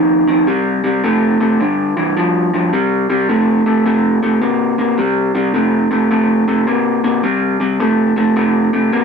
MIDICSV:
0, 0, Header, 1, 2, 480
1, 0, Start_track
1, 0, Key_signature, -3, "minor"
1, 0, Tempo, 562852
1, 408, Time_signature, 4, 2, 24, 8
1, 7713, End_track
2, 0, Start_track
2, 0, Title_t, "Clean electric guitar"
2, 0, Program_c, 0, 27
2, 0, Note_on_c, 0, 41, 84
2, 0, Note_on_c, 0, 51, 100
2, 207, Note_off_c, 0, 41, 0
2, 210, Note_off_c, 0, 51, 0
2, 236, Note_on_c, 0, 41, 84
2, 243, Note_on_c, 0, 51, 88
2, 388, Note_off_c, 0, 41, 0
2, 391, Note_off_c, 0, 51, 0
2, 402, Note_on_c, 0, 48, 86
2, 405, Note_on_c, 0, 55, 97
2, 687, Note_off_c, 0, 48, 0
2, 688, Note_off_c, 0, 55, 0
2, 715, Note_on_c, 0, 48, 83
2, 720, Note_on_c, 0, 55, 89
2, 867, Note_off_c, 0, 48, 0
2, 870, Note_off_c, 0, 55, 0
2, 885, Note_on_c, 0, 48, 87
2, 890, Note_on_c, 0, 57, 103
2, 1167, Note_off_c, 0, 48, 0
2, 1170, Note_off_c, 0, 57, 0
2, 1197, Note_on_c, 0, 48, 71
2, 1202, Note_on_c, 0, 57, 75
2, 1348, Note_off_c, 0, 48, 0
2, 1350, Note_off_c, 0, 57, 0
2, 1364, Note_on_c, 0, 43, 83
2, 1370, Note_on_c, 0, 50, 87
2, 1647, Note_off_c, 0, 43, 0
2, 1650, Note_off_c, 0, 50, 0
2, 1678, Note_on_c, 0, 43, 76
2, 1681, Note_on_c, 0, 52, 85
2, 1828, Note_off_c, 0, 43, 0
2, 1830, Note_off_c, 0, 52, 0
2, 1848, Note_on_c, 0, 43, 84
2, 1852, Note_on_c, 0, 53, 96
2, 2129, Note_off_c, 0, 43, 0
2, 2131, Note_off_c, 0, 53, 0
2, 2162, Note_on_c, 0, 43, 82
2, 2167, Note_on_c, 0, 53, 83
2, 2310, Note_off_c, 0, 43, 0
2, 2312, Note_off_c, 0, 53, 0
2, 2327, Note_on_c, 0, 48, 73
2, 2331, Note_on_c, 0, 55, 82
2, 2608, Note_off_c, 0, 48, 0
2, 2610, Note_off_c, 0, 55, 0
2, 2641, Note_on_c, 0, 48, 72
2, 2645, Note_on_c, 0, 55, 90
2, 2789, Note_off_c, 0, 48, 0
2, 2791, Note_off_c, 0, 55, 0
2, 2806, Note_on_c, 0, 48, 89
2, 2812, Note_on_c, 0, 57, 93
2, 3088, Note_off_c, 0, 48, 0
2, 3091, Note_off_c, 0, 57, 0
2, 3122, Note_on_c, 0, 48, 67
2, 3125, Note_on_c, 0, 57, 77
2, 3270, Note_off_c, 0, 48, 0
2, 3271, Note_off_c, 0, 57, 0
2, 3289, Note_on_c, 0, 48, 90
2, 3295, Note_on_c, 0, 57, 82
2, 3569, Note_off_c, 0, 48, 0
2, 3572, Note_off_c, 0, 57, 0
2, 3604, Note_on_c, 0, 48, 67
2, 3607, Note_on_c, 0, 57, 74
2, 3751, Note_off_c, 0, 48, 0
2, 3752, Note_off_c, 0, 57, 0
2, 3764, Note_on_c, 0, 48, 79
2, 3767, Note_on_c, 0, 58, 86
2, 4047, Note_off_c, 0, 48, 0
2, 4049, Note_off_c, 0, 58, 0
2, 4079, Note_on_c, 0, 48, 67
2, 4084, Note_on_c, 0, 58, 83
2, 4228, Note_off_c, 0, 48, 0
2, 4231, Note_off_c, 0, 58, 0
2, 4245, Note_on_c, 0, 48, 81
2, 4252, Note_on_c, 0, 55, 88
2, 4527, Note_off_c, 0, 48, 0
2, 4531, Note_off_c, 0, 55, 0
2, 4560, Note_on_c, 0, 48, 82
2, 4564, Note_on_c, 0, 55, 89
2, 4709, Note_off_c, 0, 48, 0
2, 4711, Note_off_c, 0, 55, 0
2, 4724, Note_on_c, 0, 48, 88
2, 4729, Note_on_c, 0, 57, 83
2, 5007, Note_off_c, 0, 48, 0
2, 5010, Note_off_c, 0, 57, 0
2, 5038, Note_on_c, 0, 48, 71
2, 5044, Note_on_c, 0, 57, 73
2, 5189, Note_off_c, 0, 48, 0
2, 5191, Note_off_c, 0, 57, 0
2, 5209, Note_on_c, 0, 48, 80
2, 5213, Note_on_c, 0, 57, 88
2, 5490, Note_off_c, 0, 48, 0
2, 5492, Note_off_c, 0, 57, 0
2, 5524, Note_on_c, 0, 48, 70
2, 5527, Note_on_c, 0, 57, 71
2, 5672, Note_off_c, 0, 48, 0
2, 5673, Note_off_c, 0, 57, 0
2, 5689, Note_on_c, 0, 48, 77
2, 5692, Note_on_c, 0, 58, 87
2, 5970, Note_off_c, 0, 48, 0
2, 5972, Note_off_c, 0, 58, 0
2, 6002, Note_on_c, 0, 48, 80
2, 6007, Note_on_c, 0, 58, 86
2, 6151, Note_off_c, 0, 48, 0
2, 6153, Note_off_c, 0, 58, 0
2, 6168, Note_on_c, 0, 48, 83
2, 6173, Note_on_c, 0, 55, 88
2, 6450, Note_off_c, 0, 48, 0
2, 6452, Note_off_c, 0, 55, 0
2, 6482, Note_on_c, 0, 48, 77
2, 6490, Note_on_c, 0, 55, 81
2, 6631, Note_off_c, 0, 48, 0
2, 6635, Note_off_c, 0, 55, 0
2, 6650, Note_on_c, 0, 48, 79
2, 6655, Note_on_c, 0, 57, 98
2, 6931, Note_off_c, 0, 48, 0
2, 6934, Note_off_c, 0, 57, 0
2, 6962, Note_on_c, 0, 48, 74
2, 6969, Note_on_c, 0, 57, 83
2, 7111, Note_off_c, 0, 48, 0
2, 7115, Note_off_c, 0, 57, 0
2, 7131, Note_on_c, 0, 48, 88
2, 7136, Note_on_c, 0, 57, 89
2, 7412, Note_off_c, 0, 48, 0
2, 7414, Note_off_c, 0, 57, 0
2, 7447, Note_on_c, 0, 48, 73
2, 7451, Note_on_c, 0, 57, 74
2, 7594, Note_off_c, 0, 48, 0
2, 7596, Note_off_c, 0, 57, 0
2, 7612, Note_on_c, 0, 48, 78
2, 7617, Note_on_c, 0, 58, 94
2, 7713, Note_off_c, 0, 48, 0
2, 7713, Note_off_c, 0, 58, 0
2, 7713, End_track
0, 0, End_of_file